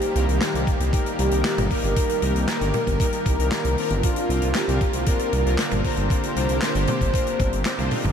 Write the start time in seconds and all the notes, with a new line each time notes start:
Already playing: D#3 G3 A#3 D#4 G4 A#4
0.01 closed hi-hat
0.15 C2 A#3 D#4 G4 A#4, closed hi-hat
0.28 C2, closed hi-hat
0.41 G4, snare, clap, closed hi-hat
0.54 C2 A#3 D#4 G4 A#4, closed hi-hat
0.67 kick, closed hi-hat
0.80 C2, closed hi-hat
0.93 A#3 D#4 G4 A#4, kick, closed hi-hat
1.06 closed hi-hat
1.19 C2, closed hi-hat
1.31 C2 A#3 D#4 G4 A#4, closed hi-hat
1.45 snare, clap, closed hi-hat
1.58 G1, closed hi-hat, mid tom
1.70 A#3 D#4 G4 A#4, kick, open hi-hat
1.84 G1, closed hi-hat
1.96 kick, closed hi-hat
2.09 closed hi-hat
2.22 C2 A#3 D#4 G4 A#4, closed hi-hat
2.35 C2, closed hi-hat
2.48 snare, clap, closed hi-hat
2.61 G1 A#3 D#4 G4 A#4, closed hi-hat
2.74 closed hi-hat, mid tom
2.87 G1, kick, closed hi-hat
3.00 A#3 D#4 G4 A#4, kick, closed hi-hat
3.13 closed hi-hat
3.26 C2, kick, closed hi-hat
3.39 C2 A#3 D#4 G4 A#4, closed hi-hat
3.51 snare, clap, closed hi-hat
3.65 C2, closed hi-hat
3.78 C4 D4 F4 A#4, open hi-hat
3.90 G1, closed hi-hat
4.03 D3 A#3 C4 F4, kick, closed hi-hat
4.16 closed hi-hat
4.29 C2 C4 D4 F4 A#4, closed hi-hat
4.42 C2, closed hi-hat
4.54 G4, snare, clap, closed hi-hat
4.68 C2 C4 D4 F4 A#4, closed hi-hat
4.81 kick, closed hi-hat
4.93 C2, closed hi-hat
5.06 C4 D4 F4 A#4, kick, closed hi-hat
5.19 closed hi-hat
5.33 C2, closed hi-hat
5.46 C2 C4 D4 F4 A#4, closed hi-hat
5.58 snare, clap, closed hi-hat
5.71 G1, closed hi-hat, mid tom
5.84 C4 D4 F4 A#4 C5, kick, open hi-hat
5.97 G1, closed hi-hat
6.10 G4, kick, closed hi-hat
6.23 closed hi-hat
6.36 C2 C4 D4 F4 A#4, closed hi-hat
6.49 C2, closed hi-hat
6.62 snare, clap, closed hi-hat
6.75 G1 C4 D4 F4 A#4, closed hi-hat
6.87 closed hi-hat, mid tom
7.01 G1, kick, closed hi-hat
7.14 C4 D4 F4 A#4, kick, closed hi-hat
7.27 closed hi-hat
7.40 G1, kick, closed hi-hat, mid tom
7.53 G1, closed hi-hat
7.65 snare, clap, closed hi-hat
7.78 C2 C4 D4 F4 C5, closed hi-hat, high tom
7.91 C4 D4 D#4 F4, open hi-hat, mid tom
8.04 G1, closed hi-hat, mid tom